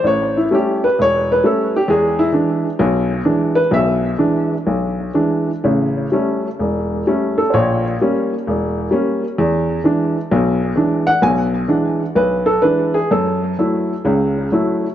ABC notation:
X:1
M:4/4
L:1/8
Q:"Swing" 1/4=129
K:Emix
V:1 name="Upright piano"
c E =G B c B A G | G E z4 z B | e z6 z | z6 z A |
[=c^c] z6 z | z6 z f | g z3 B A B G | A2 z6 |]
V:2 name="Upright piano" clef=bass
A,,,2 [=G,A,C] z E,,,2 [G,A,C] z | [E,,G,]2 [E,G,D] z [B,,,B,,]2 [E,G,D] z | [B,,,B,,]2 [E,G,D] z B,,,2 [E,G,D] z | [A,,,C,]2 [=G,A,C] z E,,,2 [G,A,C] z |
[^A,,,^A,,]2 [=G,^A,C] z E,,,2 [G,A,C] z | E,,2 [E,G,D] z [B,,,B,,]2 [E,G,D] z | [B,,,B,,]2 [E,G,D] z B,,,2 [E,G,D] z | F,,2 [F,A,E] z [C,,C,]2 [F,A,E] z |]